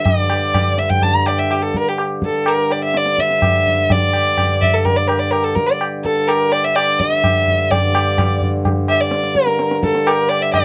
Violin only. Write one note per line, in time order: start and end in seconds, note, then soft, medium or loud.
0.05 0.80 D5 medium
0.78 0.91 E5 medium
0.90 1.04 G5 medium
1.02 1.16 A5 loud
1.14 1.29 A#5 loud
1.28 1.37 D5 medium
1.36 1.52 E5 medium
1.36 1.40 G5 medium
1.51 1.64 G4 medium
1.62 1.78 A4 medium
1.76 1.90 A#4 loud
1.88 1.99 G4 medium
2.25 2.49 A4 medium
2.47 2.73 A#4 loud
2.71 2.83 D5 medium
2.84 2.98 E5 medium
2.97 3.21 D5 medium
3.20 3.93 E5 medium
3.91 4.63 D5 loud
4.62 4.75 E5 medium
4.74 4.86 A4 medium
4.85 4.98 A#4 loud
4.96 5.09 D5 medium
5.07 5.21 A#4 medium
5.19 5.32 D5 medium
5.31 5.46 A#4 medium
5.44 5.57 A4 medium
5.55 5.68 A#4 medium
5.66 5.80 D5 medium
6.04 6.29 A4 medium
6.28 6.53 A#4 loud
6.52 6.66 D5 medium
6.64 6.77 E5 medium
6.75 7.01 D5 loud
6.99 7.72 E5 loud
7.70 8.41 D5 medium
8.89 9.02 E5 loud
9.00 9.48 D5 medium
9.48 9.71 A#4 medium
9.83 10.08 A4 medium
10.06 10.30 A#4 loud
10.29 10.43 D5 loud
10.42 10.53 E5 loud
10.53 10.65 D5 loud